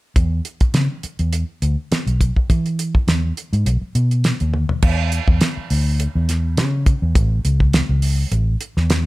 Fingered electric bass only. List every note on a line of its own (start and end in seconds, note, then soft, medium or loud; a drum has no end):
0.16 0.39 E2 medium
0.74 0.87 C#3 medium
1.04 muted fingered electric bass stroke soft
1.19 1.43 E2 medium
1.62 1.75 D2 medium
1.91 muted fingered electric bass stroke soft
2.06 2.30 B1 medium
2.50 2.96 E3 medium
3.08 3.31 E2 medium
3.53 3.63 G#2 medium
3.66 3.78 B1 medium
3.82 muted fingered electric bass stroke soft
3.95 4.31 B2 medium
4.41 4.64 D#2 medium
4.83 5.19 E2 medium
5.28 5.38 E2 medium
5.57 muted fingered electric bass stroke soft
5.71 6.06 D2 medium
6.15 6.59 E2 medium
6.58 6.93 C#3 medium
7.02 7.13 E2 medium
7.16 7.39 A1 medium
7.45 7.80 C#2 medium
7.89 8.23 C#2 medium
8.31 8.55 A1 medium
8.77 9.06 E2 medium